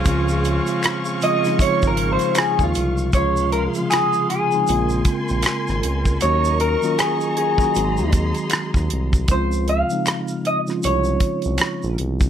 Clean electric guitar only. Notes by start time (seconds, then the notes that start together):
1.23 D#5
1.62 C#5
1.87 A#4
2.13 C5
2.38 G#4
2.64 F4
3.14 C#5
3.52 A#4
3.90 G#4
4.30 G#4
6.22 C#5
6.61 A#4
6.99 G#4
7.37 G#4
9.31 C5
9.69 F5
10.47 D#5
10.85 C#5